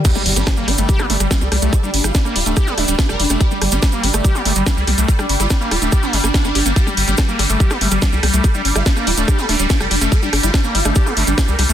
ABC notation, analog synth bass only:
X:1
M:4/4
L:1/16
Q:1/4=143
K:Gm
V:1 name="Analog synth bass" clef=bass
z2 G,,, G,,, z2 G,,, G,,, z2 G,,, G,,, z C,, C,, C,, | z2 G,,, G,,, z2 D,,, D,,, z2 D,,, D,,, z F,,, F,,, F,,, | z2 G,,, G,,, z2 G,,, G,,, z2 G,,, G,,, z C,, C,, C,, | z2 G,,, G,,, z2 D,,, D,,, z2 G,,, G,,, z G,,, G,,, G,,, |
z2 G,,, G,,, z2 G,,, G,,, z2 G,,, G,,, z C,, C,, C,, | z2 G,,, G,,, z2 D,,, D,,, z2 D,,, D,,, z F,,, F,,, F,,, | z2 G,,, G,,, z2 G,,, G,,, z2 G,,, G,,, z C,, C,, C,, |]